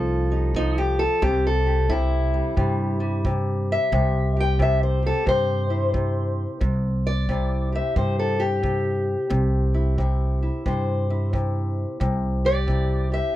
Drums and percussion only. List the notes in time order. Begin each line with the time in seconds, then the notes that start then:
0.55 kick
1.22 kick
1.90 kick
2.57 kick
3.25 kick
3.92 kick
4.60 kick
5.27 kick
5.94 kick
6.61 kick
7.29 kick
7.96 kick
8.64 kick
9.31 kick
9.98 kick
10.66 kick
11.33 kick
12.01 kick
12.68 kick